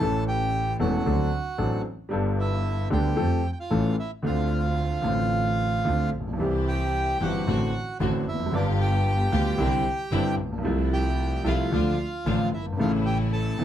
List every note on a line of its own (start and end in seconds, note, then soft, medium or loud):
0.00 0.76 A1 medium
0.00 0.76 A2 medium
0.00 0.75 E3 medium
0.00 0.76 A3 medium
0.00 0.76 C#4 medium
0.00 0.24 A4 medium
0.00 0.77 A4 medium
0.00 0.24 A5 medium
0.28 0.77 G4 medium
0.28 0.77 G5 medium
0.79 1.02 E1 medium
0.79 1.02 E2 medium
0.79 1.02 E3 medium
0.79 1.02 A3 medium
0.79 1.02 C#4 medium
0.79 1.82 F#4 medium
0.79 1.02 A4 medium
0.79 1.82 F#5 medium
1.06 1.28 D2 medium
1.06 1.28 D3 medium
1.06 1.28 F#3 medium
1.06 1.28 C4 medium
1.06 1.28 D4 medium
1.06 1.29 A4 medium
1.58 1.81 A1 medium
1.58 1.81 A2 medium
1.58 1.80 F#3 medium
1.58 1.81 C4 medium
1.58 1.81 D4 medium
1.58 1.81 A4 medium
2.09 2.87 G1 medium
2.09 2.87 G2 medium
2.09 2.86 G3 medium
2.09 2.86 B3 medium
2.09 2.87 D4 medium
2.13 2.88 A4 medium
2.39 2.88 E4 medium
2.39 2.89 E5 medium
2.90 3.13 D2 medium
2.90 3.14 D2 medium
2.90 3.13 D3 medium
2.90 3.13 G3 medium
2.90 3.13 B3 medium
2.90 3.13 D4 medium
2.90 3.47 G4 medium
2.90 3.13 A4 medium
2.90 3.51 G5 medium
3.16 3.39 F2 medium
3.16 3.40 F2 medium
3.16 3.39 F3 medium
3.16 3.39 A3 medium
3.16 3.40 C4 medium
3.16 3.39 A4 medium
3.52 3.58 G5 medium
3.60 3.96 F4 medium
3.60 3.96 F5 medium
3.70 3.93 A1 medium
3.70 3.94 A1 medium
3.70 3.93 A2 medium
3.70 3.93 E3 medium
3.70 3.93 A3 medium
3.70 3.93 C#4 medium
3.70 3.93 A4 medium
3.99 4.11 E4 medium
3.99 4.11 E5 medium
4.22 5.00 D2 medium
4.22 5.01 D2 medium
4.22 5.00 D3 medium
4.22 5.00 A3 medium
4.22 5.01 C4 medium
4.22 6.10 F4 medium
4.22 6.10 F5 medium
4.27 5.02 F4 medium
5.02 5.82 A1 medium
5.02 5.82 A2 medium
5.02 5.80 D3 medium
5.02 5.81 A3 soft
5.02 5.82 C4 medium
5.06 5.83 F4 medium
5.85 6.08 D2 medium
5.85 6.09 D2 medium
5.85 6.09 D3 medium
5.85 6.08 A3 medium
5.85 6.09 C4 medium
5.85 6.09 F4 medium
6.14 6.40 A#1 soft
6.20 6.27 A1 soft
6.27 6.33 A#1 soft
6.33 6.40 B1 medium
6.37 7.16 C2 medium
6.37 7.17 C2 medium
6.37 7.17 C3 medium
6.37 7.15 E3 medium
6.37 7.16 G3 medium
6.37 7.17 C4 medium
6.37 7.17 E4 medium
6.37 7.17 G4 medium
6.41 7.17 G4 medium
6.68 7.18 G4 medium
6.68 7.23 G5 medium
7.20 7.43 G1 medium
7.20 7.43 G2 medium
7.20 7.43 E3 medium
7.20 7.43 G3 medium
7.20 7.43 C4 medium
7.20 7.43 E4 medium
7.20 7.98 F#4 medium
7.20 7.43 G4 medium
7.20 7.98 F#5 medium
7.47 7.70 A1 medium
7.47 7.70 A2 medium
7.47 7.69 D3 medium
7.47 7.70 A3 medium
7.47 7.70 C4 medium
7.47 7.70 D4 medium
7.47 7.70 F#4 medium
8.00 8.23 A1 medium
8.00 8.23 A2 medium
8.00 8.23 D3 medium
8.00 8.23 A3 medium
8.00 8.23 C4 medium
8.00 8.23 D4 medium
8.00 8.23 F#4 medium
8.27 8.53 F1 medium
8.27 8.52 E4 medium
8.27 8.55 E5 medium
8.33 8.40 E2 soft
8.40 8.47 F2 medium
8.46 8.53 F#2 medium
8.51 9.29 G1 medium
8.51 9.29 G2 medium
8.51 9.28 D3 medium
8.51 9.29 G3 medium
8.51 9.29 B3 medium
8.51 9.29 F4 medium
8.51 9.29 G4 medium
8.51 8.67 D5 medium
8.56 8.67 D4 medium
8.56 9.30 F4 medium
8.81 10.35 G4 medium
8.81 10.35 G5 medium
9.32 9.55 D2 medium
9.32 9.55 D3 medium
9.32 9.55 G3 medium
9.32 9.55 B3 medium
9.32 9.55 F4 medium
9.32 9.55 G4 medium
9.58 9.81 C2 medium
9.58 9.81 C3 medium
9.58 9.81 D3 medium
9.58 9.81 G3 medium
9.58 9.81 C4 medium
9.58 9.81 D4 medium
9.58 9.81 E4 medium
10.11 10.34 G1 medium
10.11 10.34 G2 medium
10.11 10.34 D3 medium
10.11 10.34 G3 medium
10.11 10.34 C4 medium
10.11 10.34 D4 medium
10.11 10.34 E4 medium
10.11 10.35 E4 medium
10.38 10.64 A#1 medium
10.45 10.52 A1 soft
10.52 10.58 A#1 medium
10.58 10.65 B1 medium
10.63 11.41 C2 medium
10.63 11.41 C3 medium
10.63 11.41 F3 medium
10.63 11.41 A3 medium
10.63 11.41 E4 medium
10.67 11.42 E4 medium
10.93 11.42 G4 medium
10.93 11.47 G5 medium
11.44 11.67 C2 medium
11.44 11.67 C3 medium
11.44 11.67 F3 medium
11.44 11.67 A3 medium
11.44 11.68 A3 medium
11.44 11.67 E4 medium
11.44 11.68 E4 medium
11.44 11.68 F4 medium
11.44 12.49 F4 medium
11.44 12.49 F5 medium
11.72 11.94 D2 medium
11.72 11.94 D3 medium
11.72 11.94 F3 medium
11.72 11.94 A3 medium
11.72 11.95 A3 medium
11.72 11.95 D4 medium
11.72 11.94 F4 medium
11.72 11.95 F4 medium
12.25 12.48 A1 medium
12.25 12.48 A2 medium
12.25 12.48 D3 medium
12.25 12.48 F3 medium
12.25 12.48 A3 medium
12.25 12.48 D4 medium
12.25 12.48 F4 medium
12.52 12.79 G1 medium
12.52 12.66 E4 soft
12.52 12.66 E5 medium
12.59 12.66 F#1 soft
12.66 12.72 G1 medium
12.73 12.79 G#1 medium
12.77 13.56 A1 medium
12.77 13.56 A2 medium
12.77 13.55 C#3 medium
12.77 13.55 E3 medium
12.77 13.56 A3 medium
12.77 13.56 C#4 medium
12.77 13.56 E4 medium
12.77 13.57 E4 medium
12.77 12.92 F4 medium
12.77 12.92 F5 medium
13.06 13.18 G4 medium
13.06 13.18 G5 medium
13.33 13.64 A4 medium
13.33 13.64 A5 medium
13.58 13.64 E1 medium
13.58 13.64 E2 medium
13.58 13.64 C#3 medium
13.58 13.64 E3 medium
13.58 13.64 A3 medium
13.58 13.64 C#4 medium
13.58 13.64 E4 medium